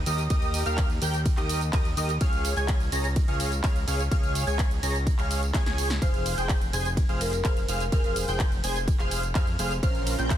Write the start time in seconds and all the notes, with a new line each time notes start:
0.06 D#2 G4 A#4 D#5 D#6, open hi-hat, tambourine
0.18 closed hi-hat, tambourine
0.30 D#2 G4 A#4 D#5 D#6, kick, closed hi-hat, ride, tambourine
0.42 closed hi-hat, tambourine
0.54 open hi-hat, tambourine
0.66 D#2 G4 A#4 F5 F6, closed hi-hat, tambourine
0.78 kick, clap, closed hi-hat, ride, tambourine
0.90 closed hi-hat, tambourine
1.02 D#2 G4 A#4 G5 G6, open hi-hat, tambourine
1.14 closed hi-hat, tambourine
1.26 kick, closed hi-hat, ride, tambourine
1.37 D#2 G4 A#4 D#5 D#6, clap, closed hi-hat, tambourine
1.49 open hi-hat, tambourine
1.61 closed hi-hat, tambourine
1.73 D#2 G4 A#4 D#5 D#6, kick, clap, closed hi-hat, ride, tambourine
1.85 closed hi-hat, tambourine
1.97 D#2 G4 A#4 D#5 D#6, open hi-hat, tambourine
2.09 closed hi-hat, tambourine
2.21 C#2 G#4 C#5 F5 F6, kick, closed hi-hat, ride, tambourine
2.33 closed hi-hat, tambourine
2.45 open hi-hat, tambourine
2.57 C#2 G#4 C#5 G#5 G#6, closed hi-hat, tambourine
2.68 kick, clap, closed hi-hat, ride, tambourine
2.80 closed hi-hat, tambourine
2.92 C#2 G#4 C#5 A#5 A#6, open hi-hat, tambourine
3.04 closed hi-hat, tambourine
3.16 kick, closed hi-hat, ride, tambourine
3.28 C#2 G#4 C#5 F5 F6, closed hi-hat, tambourine
3.40 open hi-hat, tambourine
3.52 closed hi-hat, tambourine
3.64 C#2 G#4 C#5 F5 F6, kick, clap, closed hi-hat, ride, tambourine
3.76 closed hi-hat, tambourine
3.87 C#2 G#4 C#5 F5 F6, open hi-hat, tambourine
4.00 closed hi-hat, tambourine
4.11 C#2 G#4 C#5 F5 F6, kick, closed hi-hat, ride, tambourine
4.24 closed hi-hat, tambourine
4.35 open hi-hat, tambourine
4.47 C#2 G#4 C#5 G#5 G#6, closed hi-hat, tambourine
4.59 kick, clap, closed hi-hat, ride, tambourine
4.71 closed hi-hat, tambourine
4.83 C#2 G#4 C#5 A#5 A#6, open hi-hat, tambourine
4.95 closed hi-hat, tambourine
5.07 kick, closed hi-hat, ride, tambourine
5.18 C#2 G#4 C#5 F5 F6, clap, closed hi-hat, tambourine
5.31 open hi-hat, tambourine
5.43 closed hi-hat, tambourine
5.54 C#2 G#4 C#5 G#5 G#6, kick, snare, clap, closed hi-hat, ride, tambourine
5.66 C#2 G#4 C#5 G#5 G#6, snare, closed hi-hat, tambourine
5.78 open hi-hat, tambourine
5.90 snare, tambourine
6.02 F1 G#4 C5 F5 F6, kick, closed hi-hat, ride, tambourine
6.14 closed hi-hat, tambourine
6.26 open hi-hat, tambourine
6.37 F1 G#4 C5 G5 G6, closed hi-hat, tambourine
6.49 kick, clap, closed hi-hat, ride, tambourine
6.62 closed hi-hat, tambourine
6.73 F1 G#4 C5 G#5 G#6, open hi-hat, tambourine
6.85 closed hi-hat, tambourine
6.97 kick, closed hi-hat, ride, tambourine
7.09 F1 G#4 C5 F5 F6, closed hi-hat, tambourine
7.21 A#4, open hi-hat, tambourine
7.33 A#4, closed hi-hat, tambourine
7.45 F1 G#4 C5 F5 F6, kick, clap, closed hi-hat, ride, tambourine
7.57 closed hi-hat, tambourine
7.68 F1 G#4 C5 F5 F6, open hi-hat, tambourine
7.80 closed hi-hat, tambourine
7.92 F1 G#4 A#4 C5 F5 F6, kick, closed hi-hat, ride, tambourine
8.04 A#4, closed hi-hat, tambourine
8.16 open hi-hat, tambourine
8.28 F1 G#4 C5 G5 G6, closed hi-hat, tambourine
8.40 kick, clap, closed hi-hat, ride, tambourine
8.52 closed hi-hat, tambourine
8.64 F1 G#4 C5 G#5 G#6, open hi-hat, tambourine
8.76 closed hi-hat, tambourine
8.88 kick, closed hi-hat, ride, tambourine
8.99 F1 G#4 C5 F5 F6, clap, closed hi-hat, tambourine
9.11 open hi-hat, tambourine
9.23 closed hi-hat, tambourine
9.35 F2 G#4 C5 F5 F6, kick, clap, closed hi-hat, ride, tambourine
9.47 closed hi-hat, tambourine
9.59 F1 G#4 C5 F5 F6, open hi-hat, tambourine
9.71 closed hi-hat, tambourine
9.83 A#1 C#4 F4 A#4 C5 F5 F6, kick, closed hi-hat, ride, tambourine
9.95 closed hi-hat, tambourine
10.07 open hi-hat, tambourine
10.19 A#1 C#4 F4 A#4 C5 G5 G6, closed hi-hat, tambourine
10.30 kick, clap, closed hi-hat, ride, tambourine